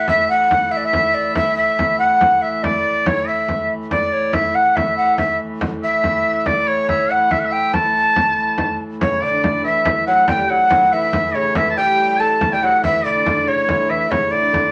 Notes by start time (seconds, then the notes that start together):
Already playing: A2 E3
0.08 E5, frame drum
0.29 F#5
0.51 F#5, frame drum
0.71 E5
0.77 D5
0.85 E5
0.93 frame drum
1.14 D5
1.35 E5, frame drum
1.56 E5
1.79 frame drum
1.99 F#5
2.21 frame drum
2.42 E5
2.63 D5, frame drum
3.06 C#5, frame drum
3.28 E5, frame drum
3.48 frame drum
3.91 A2 E3 D5, frame drum
4.13 C#5
4.33 E5, frame drum
4.55 F#5
4.76 E5, frame drum
4.97 F#5
5.18 E5, frame drum
5.61 frame drum
5.83 E5
6.04 frame drum
6.46 D5, frame drum
6.68 C#5
6.89 E5, frame drum
7.10 F#5
7.31 E5, frame drum
7.40 F#5
7.45 E5
7.52 G5
7.73 A5, frame drum
8.16 frame drum
8.58 frame drum
8.80 frame drum
9.00 A2 C#3 E3 C#5, frame drum
9.22 D3 D5
9.44 D5, frame drum
9.64 E3 E5
9.85 frame drum
10.07 F#3 F#5
10.28 G3 G5, frame drum
10.41 G5
10.49 F#3 F#5
10.70 F#3, frame drum
10.92 E3 E5
11.13 frame drum
11.35 C#3 C#5
11.55 E3 E5, frame drum
11.70 A5
11.77 G3 G5
12.20 A3 A5
12.41 frame drum
12.52 G3 G5
12.63 F#3 F#5
12.84 E3 E5, frame drum
13.05 D3 D5
13.26 D3, frame drum
13.48 C#3 C#5, frame drum
13.68 D3, frame drum
13.89 E3 E5
14.11 A2 C#3 E3 C#5, frame drum
14.31 D3 D5
14.53 D3, frame drum